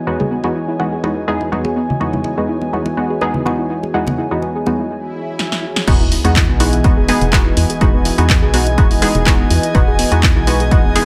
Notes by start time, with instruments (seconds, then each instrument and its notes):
Already playing: analog synth pad E3 B3 F#4 G#4 C#5 D#5 G#5
0.07 synth stab E2 G#3 B3 D#4 F#4, synth arpeggio sound B4
0.20 synth arpeggio sound G#4, muted conga, high conga, low conga
0.31 synth arpeggio sound B3
0.44 synth stab E2 G#3 B3 D#4 F#4, synth arpeggio sound E4, muted conga
0.55 synth arpeggio sound E4
0.68 synth arpeggio sound E4
0.79 synth stab E2 G#3 B3 D#4 F#4, synth arpeggio sound E4, muted conga
0.92 synth arpeggio sound G#4
1.03 synth stab E2 G#3 B3 D#4 F#4, synth arpeggio sound E4, muted conga
1.17 synth arpeggio sound B3
1.28 synth stab E2 G#3 B3 D#4 G#4, synth arpeggio sound E4
1.41 synth arpeggio sound E4, muted conga
1.52 synth stab E2 G#3 B3 D#4 F#4, synth arpeggio sound B4, high conga
1.65 synth arpeggio sound G#4, muted conga
1.76 synth arpeggio sound B3
1.89 synth arpeggio sound E4, low conga
2.00 synth stab E2 G#3 B3 D#4 F#4, synth arpeggio sound E4, muted conga
2.13 synth arpeggio sound E4, high conga, low conga
2.24 synth arpeggio sound E4, muted conga
2.37 synth stab E2 G#3 B3 D#4 F#4, synth arpeggio sound G#4
2.49 synth arpeggio sound E4
2.61 synth arpeggio sound B3, muted conga
2.73 synth stab E2 G#3 B3 D#4 F#4, synth arpeggio sound E4, high conga
2.86 synth arpeggio sound E4, muted conga
2.97 synth stab E2 G#3 B3 D#4 F#4, synth arpeggio sound B4
3.10 synth arpeggio sound G#4
3.21 synth stab E2 G#3 B3 D#4 G#4, synth arpeggio sound B3, muted conga
3.34 synth arpeggio sound E4, low conga
3.46 synth stab E2 G#3 B3 D#4 F#4, synth arpeggio sound E4, muted conga, high conga
3.59 synth arpeggio sound E4
3.70 synth arpeggio sound E4
3.83 synth arpeggio sound G#4, muted conga
3.94 synth stab E2 G#3 B3 D#4 F#4, synth arpeggio sound E4
4.07 synth arpeggio sound B3, muted conga, high conga, low conga
4.18 synth arpeggio sound E4
4.31 synth stab E2 G#3 B3 D#4 F#4, synth arpeggio sound E4
4.42 synth arpeggio sound B4, muted conga
4.55 synth arpeggio sound G#4
4.66 synth stab E2 G#3 B3 D#4 F#4, synth arpeggio sound B3, muted conga, high conga
4.80 synth arpeggio sound E4
4.91 swell
5.39 snare
5.52 snare
5.76 snare
5.87 fm bass E1, synth stab G#3 B3 D#4 F#4, analog synth pad B3 F#4 G#4 B4 D#5, synth arpeggio sound E4, kick, closed hi-hat, crash, sub drop
6.00 analog synth pad E3, synth arpeggio sound E4
6.12 synth arpeggio sound E4, analog synth pad G#5, open hi-hat
6.18 analog synth pad D#5
6.24 fm bass E2, synth stab G#3 B3 D#4 F#4, synth arpeggio sound G#4, closed hi-hat
6.36 synth arpeggio sound E4, kick, clap, closed hi-hat
6.49 fm bass B1, synth arpeggio sound B3
6.60 synth stab G#3 B3 D#4 F#4, synth arpeggio sound E4, open hi-hat
6.73 synth arpeggio sound E4, closed hi-hat
6.84 fm bass E1, synth stab G#3 B3 D#4 F#4, synth arpeggio sound B4, kick, closed hi-hat
6.97 synth arpeggio sound G#4
7.08 synth stab G#3 B3 D#4 G#4, synth arpeggio sound B3, open hi-hat
7.21 fm bass E1, synth arpeggio sound E4, closed hi-hat
7.33 synth stab G#3 B3 D#4 F#4, synth arpeggio sound E4, kick, clap, closed hi-hat
7.46 synth arpeggio sound E4
7.57 fm bass E2, synth arpeggio sound E4, open hi-hat
7.70 synth arpeggio sound G#4, closed hi-hat
7.81 fm bass E1, synth stab G#3 B3 D#4 F#4, synth arpeggio sound E4, kick, closed hi-hat
7.94 synth arpeggio sound B3
8.05 synth arpeggio sound E4, open hi-hat
8.18 fm bass E2, synth stab G#3 B3 D#4 F#4, synth arpeggio sound E4, closed hi-hat
8.29 synth arpeggio sound B4, kick, clap, closed hi-hat
8.42 fm bass B1, synth arpeggio sound G#4
8.54 synth stab G#3 B3 D#4 F#4, synth arpeggio sound B3, open hi-hat
8.67 synth arpeggio sound E4, closed hi-hat
8.78 fm bass E1, synth stab G#3 B3 D#4 F#4, synth arpeggio sound E4, kick, closed hi-hat
8.91 synth arpeggio sound E4, open hi-hat
9.02 synth stab G#3 B3 D#4 G#4, synth arpeggio sound E4, open hi-hat
9.15 fm bass E1, synth arpeggio sound G#4, closed hi-hat
9.26 synth stab G#3 B3 D#4 F#4, synth arpeggio sound E4, kick, clap, closed hi-hat
9.39 synth arpeggio sound B3
9.50 fm bass E2, synth arpeggio sound E4, open hi-hat
9.63 synth arpeggio sound E4, closed hi-hat
9.74 fm bass E1, synth stab G#3 B3 D#4 F#4, synth arpeggio sound B4, kick, closed hi-hat
9.88 synth arpeggio sound G#4
9.99 synth arpeggio sound B3, open hi-hat
10.12 fm bass E2, synth stab G#3 B3 D#4 F#4, synth arpeggio sound E4, closed hi-hat
10.23 synth arpeggio sound E4, kick, clap, closed hi-hat
10.36 fm bass B1, synth arpeggio sound E4
10.47 synth stab G#3 B3 D#4 F#4, synth arpeggio sound E4, open hi-hat
10.60 synth arpeggio sound G#4, closed hi-hat
10.71 fm bass E1, synth stab G#3 B3 D#4 F#4, synth arpeggio sound E4, kick, closed hi-hat
10.84 synth arpeggio sound B3
10.95 synth stab G#3 B3 D#4 G#4, synth arpeggio sound E4, open hi-hat